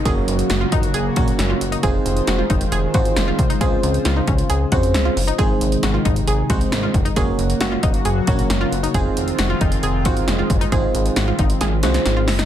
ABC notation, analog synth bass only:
X:1
M:4/4
L:1/8
Q:1/4=135
K:Abmix
V:1 name="Analog synth bass" clef=bass
G,,, G,,, G,,, G,,, G,,, B,,, G,,, G,,, | F,,, F,,, F,,, F,,, F,,, A,,, F,,, C,, | D,, D,, D,, D,, D,, F,, D,, G,,, | A,,, A,,, A,,, A,,, A,,, C,, A,,, F,,, |
G,,, G,,, G,,, G,,, G,,, B,,, G,,, G,,, | F,,, F,,, F,,, F,,, F,,, A,,, F,,, G,,, | A,,, A,,, A,,, A,,, A,,, C,, A,,, G,,, |]